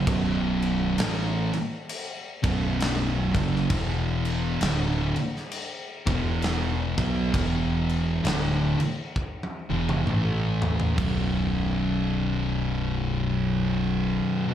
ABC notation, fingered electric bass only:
X:1
M:4/4
L:1/8
Q:"Swing" 1/4=66
K:Bm
V:1 name="Fingered electric bass" clef=bass
B,,,,2 A,,, z2 B,,,,2 F,,, | E,,,2 D,,, z2 E,,,2 B,,, | E,,,2 D,,, z2 E,,, A,,,2 | B,,,,8 |]